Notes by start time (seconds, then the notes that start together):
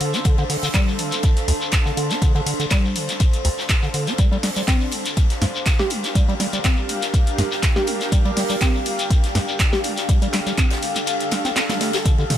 Already playing: D4 A4 C5 F5
0.01 D3, open hi-hat, ride
0.14 D4, snare, closed hi-hat, shekere
0.24 D3, kick, closed hi-hat, ride, shekere
0.38 D3, ride, shekere
0.50 D3, snare, open hi-hat
0.63 D3, closed hi-hat, shekere
0.74 G3, kick, snare, clap, closed hi-hat, ride, shekere
0.88 shekere
0.99 D3, open hi-hat, ride
1.12 D4, closed hi-hat, shekere
1.23 D3, kick, closed hi-hat, ride, shekere
1.36 snare, closed hi-hat, shekere
1.48 D2, open hi-hat, ride
1.61 shekere
1.72 kick, snare, clap, closed hi-hat, ride, shekere
1.85 D3, snare, shekere
1.97 D3, open hi-hat, ride
2.10 D4, snare, closed hi-hat, shekere
2.22 D3, kick, closed hi-hat, ride, shekere
2.35 D3, ride, shekere
2.46 D3, open hi-hat, ride
2.60 D3, closed hi-hat, ride, shekere
2.70 G3, kick, snare, clap, closed hi-hat, ride, shekere
2.85 shekere
2.96 D3, open hi-hat, ride
3.09 D4, snare, closed hi-hat, shekere
3.20 D3, kick, closed hi-hat, ride, shekere
3.33 closed hi-hat, shekere
3.45 D2, open hi-hat, ride
3.59 snare, shekere
3.69 kick, snare, clap, closed hi-hat, ride, shekere
3.83 D3, snare, shekere
3.94 D3, open hi-hat, ride
4.07 D4, snare, closed hi-hat, shekere
4.18 G3 D4, kick, closed hi-hat, ride, shekere
4.32 G3, ride, shekere
4.43 G3, snare, open hi-hat
4.49 G4 F5
4.56 G3, closed hi-hat, shekere
4.68 C4, kick, snare, clap, closed hi-hat, ride, shekere
4.80 shekere
4.91 G3, open hi-hat, ride
5.06 G4, closed hi-hat, shekere
5.17 G3, kick, closed hi-hat, ride, shekere
5.26 A#4, closed hi-hat
5.30 snare, shekere
5.42 G2, snare, open hi-hat, ride
5.55 shekere
5.66 kick, snare, clap, closed hi-hat, ride, shekere
5.79 G4, snare, shekere
5.90 G3, open hi-hat, ride
6.04 G4, snare, closed hi-hat, shekere
6.15 G3, kick, closed hi-hat, ride, shekere
6.29 G3, ride, shekere
6.40 G3, snare, open hi-hat, ride
6.53 G3, closed hi-hat, ride, shekere
6.64 C4, kick, snare, clap, closed hi-hat, ride, shekere
6.77 shekere
6.89 G3, open hi-hat, ride
7.02 G4, snare, closed hi-hat, shekere
7.14 G3, kick, closed hi-hat, ride, shekere
7.27 closed hi-hat, shekere
7.38 G2, snare, open hi-hat, ride
7.51 snare, shekere
7.63 kick, snare, clap, closed hi-hat, ride, shekere
7.76 G4, snare, shekere
7.87 G3, open hi-hat, ride
8.01 G4, snare, closed hi-hat, shekere
8.12 G3, kick, closed hi-hat, ride, shekere
8.25 G3, ride, shekere
8.37 G3, snare, open hi-hat
8.49 G3, closed hi-hat, shekere
8.61 C4, kick, snare, clap, closed hi-hat, ride, shekere
8.75 A4, shekere
8.86 G3, open hi-hat, ride
8.99 G4, closed hi-hat, shekere
9.10 G3, kick, closed hi-hat, ride, shekere
9.24 snare, closed hi-hat, shekere
9.35 G2, snare, open hi-hat, ride
9.48 shekere
9.59 kick, snare, clap, closed hi-hat, ride, shekere
9.72 G4, snare, shekere
9.84 G3, open hi-hat, ride
9.97 G4, snare, closed hi-hat, shekere
10.09 G3, kick, closed hi-hat, ride, shekere
10.22 G3, closed hi-hat, ride, shekere
10.33 G3, snare, clap, open hi-hat, ride
10.46 G3, snare, closed hi-hat, shekere
10.58 C4, kick, clap, closed hi-hat, ride, shekere
10.70 snare, closed hi-hat, ride, shekere
10.82 G3, snare, open hi-hat
10.95 G4, snare, closed hi-hat, ride, shekere
11.07 G3, closed hi-hat, ride, shekere
11.20 closed hi-hat, shekere
11.31 snare, open hi-hat, ride
11.45 C4, snare, closed hi-hat, shekere
11.56 C4, snare, clap, closed hi-hat, ride, shekere
11.69 G3, snare, closed hi-hat, ride, shekere
11.81 A3, snare, open hi-hat, ride
11.93 G4, snare, closed hi-hat, ride, shekere
12.05 D3, kick, closed hi-hat, ride, shekere
12.18 D3, ride, shekere
12.30 D3, snare, mid tom, open hi-hat